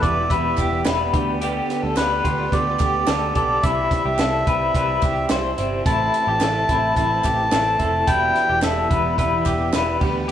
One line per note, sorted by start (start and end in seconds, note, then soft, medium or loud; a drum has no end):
0.00 0.26 E1 loud
0.00 1.12 E3 medium
0.00 3.60 B3 medium
0.00 0.31 B3 medium
0.00 0.30 E4 medium
0.00 1.12 G4 medium
0.00 0.29 B4 medium
0.00 0.31 D5 loud
0.00 kick loud
0.00 closed hi-hat medium
0.04 0.29 E3 soft
0.04 0.30 G3 medium
0.29 0.53 E1 loud
0.29 0.84 E3 medium
0.29 0.86 G3 medium
0.29 0.87 B3 medium
0.29 0.87 E4 medium
0.29 0.58 B4 medium
0.29 0.81 E5 loud
0.29 kick medium
0.29 closed hi-hat medium
0.57 0.81 E1 loud
0.57 0.86 G4 medium
0.57 kick medium
0.57 clap medium
0.57 closed hi-hat medium
0.85 1.09 E1 medium
0.85 1.13 E3 medium
0.85 1.14 G3 medium
0.85 1.14 B3 medium
0.85 1.13 E4 medium
0.85 1.38 B4 medium
0.85 snare loud
0.85 clap loud
0.85 closed hi-hat medium
1.13 1.59 D2 loud
1.13 3.61 D3 medium
1.13 1.41 G3 medium
1.13 1.41 B3 medium
1.13 1.41 G4 medium
1.13 3.61 G4 medium
1.13 kick loud
1.13 closed hi-hat medium
1.41 1.95 D3 medium
1.41 1.97 G3 medium
1.41 1.97 B3 loud
1.41 1.80 G4 loud
1.41 1.99 G4 loud
1.41 closed hi-hat medium
1.70 snare soft
1.70 closed hi-hat medium
1.83 1.95 D2 medium
1.83 1.97 A4 medium
1.96 2.20 D2 loud
1.96 2.24 D3 medium
1.96 2.25 G3 medium
1.96 2.24 B3 medium
1.96 2.23 G4 medium
1.96 2.54 B4 medium
1.96 2.25 B4 medium
1.96 snare loud
1.96 clap medium
1.96 closed hi-hat medium
2.24 2.47 D2 loud
2.24 2.51 G3 soft
2.24 2.52 B3 medium
2.24 2.77 F4 medium
2.24 2.52 G4 medium
2.24 kick medium
2.24 closed hi-hat medium
2.51 2.75 D2 loud
2.51 3.06 D3 medium
2.51 3.08 G3 medium
2.51 3.08 B3 medium
2.51 3.10 G4 medium
2.51 3.34 D5 medium
2.51 kick medium
2.51 closed hi-hat medium
2.79 3.03 D2 medium
2.79 3.08 G4 medium
2.79 kick medium
2.79 clap medium
2.79 closed hi-hat medium
3.07 3.31 D2 loud
3.07 3.35 D3 medium
3.07 3.36 G3 medium
3.07 3.35 B3 medium
3.07 3.34 G4 medium
3.07 3.34 A4 medium
3.07 snare loud
3.07 clap loud
3.07 closed hi-hat medium
3.35 3.58 B1 medium
3.35 3.63 G3 soft
3.35 3.64 B3 medium
3.35 3.63 G4 medium
3.35 3.63 A4 medium
3.35 3.64 D5 loud
3.35 kick medium
3.35 closed hi-hat medium
3.63 3.86 C2 medium
3.63 4.19 C3 medium
3.63 8.04 C3 medium
3.63 4.18 E3 medium
3.63 4.18 G3 medium
3.63 5.84 G3 medium
3.63 4.20 C4 medium
3.63 4.03 E4 loud
3.63 8.04 E4 medium
3.63 4.20 E4 loud
3.63 5.26 E5 loud
3.63 kick loud
3.63 closed hi-hat loud
3.91 kick loud
3.91 snare soft
3.91 closed hi-hat medium
4.05 4.17 C2 medium
4.05 4.19 G4 medium
4.18 4.42 C2 loud
4.18 4.46 E3 medium
4.18 4.47 G3 medium
4.18 4.47 C4 medium
4.18 4.45 E4 medium
4.18 4.47 A4 medium
4.18 snare loud
4.18 clap medium
4.18 closed hi-hat medium
4.46 4.70 C2 loud
4.46 4.74 G3 soft
4.46 4.75 C4 medium
4.46 4.74 E4 medium
4.46 4.74 B4 medium
4.46 kick loud
4.46 closed hi-hat medium
4.74 4.97 C2 loud
4.74 5.29 E3 medium
4.74 5.29 G3 medium
4.74 5.31 C4 medium
4.74 5.32 E4 medium
4.74 5.03 B4 medium
4.74 kick medium
4.74 closed hi-hat loud
5.02 5.25 C2 loud
5.02 5.31 G4 medium
5.02 kick loud
5.02 clap medium
5.02 closed hi-hat medium
5.29 5.53 C2 medium
5.29 5.57 E3 medium
5.29 5.58 G3 medium
5.29 5.58 C4 medium
5.29 5.56 E4 medium
5.29 5.83 C5 medium
5.29 snare loud
5.29 clap medium
5.29 closed hi-hat medium
5.57 5.81 G1 medium
5.57 5.86 G3 medium
5.57 5.86 C4 medium
5.57 5.85 E4 medium
5.57 closed hi-hat medium
5.85 6.08 A1 loud
5.85 6.41 A2 medium
5.85 6.40 E3 medium
5.85 8.05 A3 medium
5.85 6.40 A3 medium
5.85 6.41 C4 medium
5.85 6.25 E4 medium
5.85 6.43 E4 medium
5.85 6.95 A5 loud
5.85 kick loud
5.85 closed hi-hat medium
6.14 closed hi-hat medium
6.27 6.39 A1 medium
6.27 6.41 G4 medium
6.40 6.64 A1 medium
6.40 6.68 E3 medium
6.40 6.69 A3 medium
6.40 6.70 C4 medium
6.40 6.68 E4 medium
6.40 6.69 A4 medium
6.40 snare medium
6.40 clap medium
6.40 closed hi-hat medium
6.69 6.92 A1 loud
6.69 6.96 A3 soft
6.69 6.97 C4 medium
6.69 6.97 E4 medium
6.69 7.21 E4 medium
6.69 kick medium
6.69 closed hi-hat medium
6.96 7.19 A1 loud
6.96 7.52 E3 medium
6.96 7.52 A3 medium
6.96 7.53 C4 medium
6.96 7.54 E4 medium
6.96 8.11 A5 loud
6.96 kick loud
6.96 closed hi-hat medium
7.24 7.47 A1 medium
7.24 7.52 G4 medium
7.24 kick medium
7.24 clap medium
7.24 closed hi-hat medium
7.52 7.75 A1 medium
7.52 7.80 E3 medium
7.52 7.80 A3 medium
7.52 7.80 C4 medium
7.52 7.78 E4 medium
7.52 7.79 A4 medium
7.52 snare loud
7.52 clap loud
7.52 closed hi-hat medium
7.79 8.03 F1 medium
7.79 8.08 A3 medium
7.79 8.08 C4 medium
7.79 8.07 E4 medium
7.79 8.07 A4 medium
7.79 kick medium
7.79 closed hi-hat medium
8.07 8.30 E1 loud
8.07 8.63 E2 medium
8.07 8.63 B2 medium
8.07 10.00 E3 medium
8.07 8.61 E3 medium
8.07 8.63 G3 medium
8.07 10.31 B3 medium
8.07 8.64 B3 medium
8.07 8.46 E4 loud
8.07 8.64 E4 medium
8.07 10.31 G4 medium
8.07 8.59 G5 loud
8.07 kick loud
8.07 closed hi-hat loud
8.35 snare soft
8.35 closed hi-hat medium
8.49 8.61 E1 medium
8.49 8.63 G4 medium
8.62 8.86 E1 loud
8.62 8.90 E3 medium
8.62 8.91 G3 medium
8.62 8.90 B3 medium
8.62 8.89 E4 medium
8.62 8.90 A4 medium
8.62 9.15 E5 medium
8.62 snare loud
8.62 clap loud
8.62 closed hi-hat medium
8.90 9.13 E1 loud
8.90 9.16 E3 soft
8.90 9.18 G3 soft
8.90 9.19 B3 medium
8.90 9.18 E4 medium
8.90 9.17 B4 medium
8.90 kick loud
8.90 closed hi-hat medium
9.17 9.41 E1 loud
9.17 9.72 E3 medium
9.17 9.74 G3 medium
9.17 9.75 B3 medium
9.17 9.75 E4 medium
9.17 9.45 B4 medium
9.17 9.97 E5 medium
9.17 kick medium
9.17 closed hi-hat loud
9.45 9.69 E1 loud
9.45 9.73 G4 medium
9.45 kick medium
9.45 clap medium
9.45 closed hi-hat medium
9.73 9.97 E1 medium
9.73 10.01 E3 medium
9.73 10.02 G3 medium
9.73 10.01 B3 medium
9.73 10.00 E4 medium
9.73 10.26 B4 medium
9.73 snare loud
9.73 clap medium
9.73 closed hi-hat medium
10.00 10.31 D2 loud
10.00 10.31 D3 medium
10.00 10.28 G3 medium
10.00 10.29 B3 medium
10.00 10.29 G4 medium
10.00 kick loud
10.00 crash medium
10.28 10.31 G4 loud